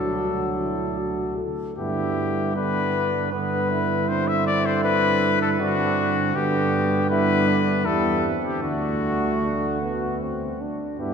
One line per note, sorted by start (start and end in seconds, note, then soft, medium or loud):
0.00 1.41 D2 soft
0.00 1.45 F#3 soft
0.00 1.41 D4 soft
0.00 0.10 F#4 soft
0.00 1.35 A4 medium
0.19 0.56 F#4 soft
0.59 1.00 E4 soft
0.98 1.39 F#4 soft
1.38 1.77 A4 soft
1.78 6.31 G2 soft
1.78 2.52 D3 medium
1.78 2.51 B3 soft
1.78 2.58 E4 medium
1.78 2.52 G4 medium
2.55 3.31 D3 soft
2.55 3.31 B3 medium
2.55 3.34 D4 soft
2.55 3.31 B4 medium
3.31 4.07 D3 medium
3.31 4.10 B3 soft
3.31 3.72 B3 medium
3.31 4.10 B4 medium
3.70 5.61 E4 medium
4.08 5.57 D3 medium
4.08 5.43 C4 soft
4.08 4.29 C5 medium
4.28 4.46 E5 medium
4.46 4.67 D5 medium
4.66 4.84 C5 medium
4.84 5.40 B4 loud
5.42 5.50 A4 medium
5.59 6.34 D3 medium
5.59 6.37 C4 medium
5.59 6.35 D4 medium
5.59 6.37 F#4 medium
6.34 7.88 G2 medium
6.34 7.09 D3 medium
6.34 7.09 B3 medium
6.34 7.10 B3 medium
6.34 7.09 G4 medium
7.10 7.87 D3 medium
7.10 7.85 B3 medium
7.10 7.49 E4 medium
7.10 7.87 B4 medium
7.48 7.85 D4 medium
7.86 8.36 E2 medium
7.86 8.36 G3 medium
7.86 8.26 B3 medium
7.86 8.35 E4 medium
7.86 8.27 A4 medium
8.24 8.65 C4 soft
8.44 8.63 G4 medium
8.62 10.63 D2 medium
8.62 10.63 A3 medium
8.62 9.35 D4 medium
8.62 10.57 F#4 medium
8.62 10.19 F#4 medium
9.43 9.80 D4 medium
9.82 10.23 B3 medium
10.22 10.62 C4 soft
10.61 10.99 D4 soft
10.99 11.14 G2 medium
10.99 11.14 B3 medium
10.99 11.14 D4 soft
10.99 11.14 E4 soft
10.99 11.14 G4 medium